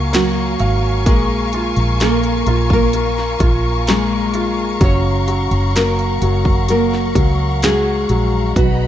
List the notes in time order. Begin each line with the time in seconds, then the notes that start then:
Already playing: C#2 A#3 F#4 A#4 F5 G#5 A#5 C#6
0.13 F#3 A#3 F#4, snare, closed hi-hat
0.59 G#1 F5, closed hi-hat
1.06 A#1 G#3 A#3 G#4 A#5, kick, closed hi-hat
1.53 F4, closed hi-hat
1.76 A#1, closed hi-hat
2.00 A#3 A#4, snare, closed hi-hat
2.23 closed hi-hat
2.46 A#1 F4, closed hi-hat
2.70 A#3 A#4, kick
2.93 A#3, closed hi-hat
3.18 snare
3.40 A#1 F4, kick, closed hi-hat
3.87 G#3 A#3 G#4, snare, closed hi-hat
4.34 F4, closed hi-hat
4.81 F#1 F#3 C#4 C#5 F#5, kick, closed hi-hat
5.28 F#3, closed hi-hat
5.51 F#1, closed hi-hat
5.75 F#3 A#3 A#4, snare, closed hi-hat
5.99 closed hi-hat
6.22 F#1 F#3, closed hi-hat
6.45 kick
6.68 F#3 A#3 A#4, closed hi-hat
6.93 snare
7.15 C#2 F#3, kick, closed hi-hat
7.62 F#3 G#3 G#4, snare, closed hi-hat
8.09 A#1 F#3, closed hi-hat
8.56 B1 F#3 B3 F#4 D#5 B5, kick, closed hi-hat